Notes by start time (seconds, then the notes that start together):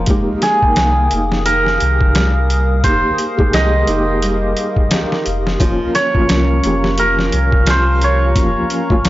Already playing: F3 C#4 F4 A#4
0.06 F1 G#3 A#3 D#4 G4 F5 D#6, kick, closed hi-hat
0.42 G#4, snare, closed hi-hat
0.62 A#3 D#4 G5, kick
0.76 C2 D#3, snare, closed hi-hat
1.11 F1 A#3 D#4 G#5, closed hi-hat
1.32 snare
1.45 D#3 A#4, closed hi-hat
1.67 snare
1.80 C2, closed hi-hat
2.01 kick
2.15 G3, snare, closed hi-hat
2.50 closed hi-hat
2.84 F1 D#3 A#3 D#4 G4 C5, kick, closed hi-hat
3.18 closed hi-hat
3.38 G#3 A#3 D#4 G4, kick
3.53 C2 D#3 D#5, snare, closed hi-hat
3.87 F1 A#3 D#4 G4, closed hi-hat
4.22 G3, closed hi-hat
4.57 closed hi-hat
4.76 kick
4.91 D#3, snare, closed hi-hat
5.12 snare
5.26 F1, closed hi-hat
5.47 snare
5.59 F1 F3 A#3 C#4 F4 F5 A#5, kick, closed hi-hat
5.95 C#5, snare, closed hi-hat
6.14 F3 A#3 C#4 F4, kick
6.29 C2 C#4, snare, closed hi-hat
6.62 F1 F3 A#3 C#4 G4, closed hi-hat
6.84 snare
6.97 F3 A#4, closed hi-hat
7.19 snare
7.32 C2, closed hi-hat
7.52 kick
7.66 F3 C5, snare, closed hi-hat
8.01 C#5, closed hi-hat
8.35 F1 F3 A#3 C#4 F4, kick, closed hi-hat
8.70 closed hi-hat
8.90 F3 A#3 C#4 F4, kick
9.05 C2 F3, snare, closed hi-hat